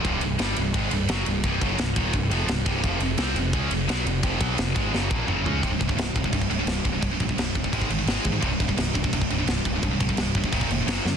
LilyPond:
<<
  \new Staff \with { instrumentName = "Distorted electric guitar" } { \clef bass \time 4/4 \key c \minor \tempo 4 = 172 <c, g, c>8 <c, g,>8 <g, d g>8 <c, g,>8 <aes, ees aes>8 <c, g,>8 <fis, des fis>8 <c, g,>8 | <c, g, c>8 <fis, des fis>8 <c, g,>8 <ees, bes, ees>8 <c, g,>8 <f, c f>8 <c, g,>8 <c, g, c>8 | <f, c f>8 <f, c>8 <c g c'>8 <f, c>8 <des aes des'>8 <f, c>8 <b, fis b>8 <f, c>8 | <f, c f>8 <b, fis b>8 <f, c>8 <aes, ees aes>8 <fis, des fis>8 <bes, f bes>8 <fis, des fis>8 <des aes des'>8 |
<c, g, c>16 <c, g,>16 <c, g,>16 <c, g,>16 <c, g,>8 <c, g,>16 <c, g,>16 <c, g,>8 <c, g,>16 <c, g,>16 <c, g,>8 <c, g,>16 <c, g,>16 | <c, g,>16 <c, g,>16 <c, g,>16 <c, g,>16 <c, g,>8 <c, g,>16 <c, g,>16 <aes, ees aes>8 <aes, ees>16 <aes, ees>16 <aes, ees aes>8 <aes, ees>16 <aes, ees>16 | <c, g, c>16 <c, g,>16 <c, g,>16 <c, g,>16 <c, g,>8 <c, g,>16 <c, g,>16 <c, g,>8 <c, g,>16 <c, g,>16 <c, g,>8 <c, g,>16 <c, g,>16 | <c, g,>16 <c, g,>16 <c, g,>16 <c, g,>16 <c, g,>8 <c, g,>16 <c, g,>16 <ees, bes, ees>8 <ees, bes,>16 <ees, bes,>16 <fis, cis fis>8 <fis, cis>16 r16 | }
  \new Staff \with { instrumentName = "Picked electric bass" } { \clef bass \time 4/4 \key c \minor c,,8 c,,8 g,,8 c,,8 aes,,8 c,,8 fis,,8 c,,8 | c,,8 fis,,8 c,,8 ees,,8 c,,8 f,,8 c,,8 c,,8 | f,,8 f,,8 c,8 f,,8 des,8 f,,8 b,,8 f,,8 | f,,8 b,,8 f,,8 aes,,8 fis,,8 bes,,8 fis,,8 des,8 |
c,,8 c,,8 c,,8 c,,8 c,,8 c,,8 c,,8 c,,8 | c,,8 bes,,8 c,,8 c,,8 aes,,8 aes,,8 aes,,8 aes,8 | c,,8 c,,8 c,,8 c,,8 c,,8 c,,8 c,,8 c,,8 | c,,8 bes,,8 c,,8 c,,8 ees,,8 f,,8 fis,,8 fis,8 | }
  \new DrumStaff \with { instrumentName = "Drums" } \drummode { \time 4/4 <bd cymr>8 cymr8 <cymr sn>8 cymr8 <bd cymr>8 cymr8 <cymr sn>8 cymr8 | <bd cymr>8 <bd cymr>8 <cymr sn>8 <bd cymr>8 <bd cymr>8 cymr8 <cymr sn>8 <bd cymr>8 | <bd cymr>8 cymr8 <cymr sn>8 cymr8 <bd cymr>8 cymr8 <cymr sn>8 cymr8 | <bd cymr>8 <bd cymr>8 <cymr sn>8 <bd cymr>8 sn8 bd8 toml8 tomfh8 |
<cymc bd>8 <cymc bd>16 bd16 <cymc sn>8 <cymc bd>16 bd16 <cymc bd>16 bd16 cymc8 <cymc sn>8 <cymc bd>8 | <cymc bd>8 <cymc bd>16 bd16 <cymc sn>8 <cymc bd>16 bd16 <cymc bd>16 bd16 cymc8 <cymc sn>8 <cymc bd>8 | <cymc bd>8 <cymc bd>16 bd16 <cymc sn>8 <cymc bd>16 bd16 <cymc bd>16 bd16 cymc8 <cymc sn>8 <cymc bd>8 | <cymc bd>8 <cymc bd>16 bd16 <cymc sn>8 <cymc bd>16 bd16 <cymc bd>16 bd16 cymc8 <cymc sn>8 sn8 | }
>>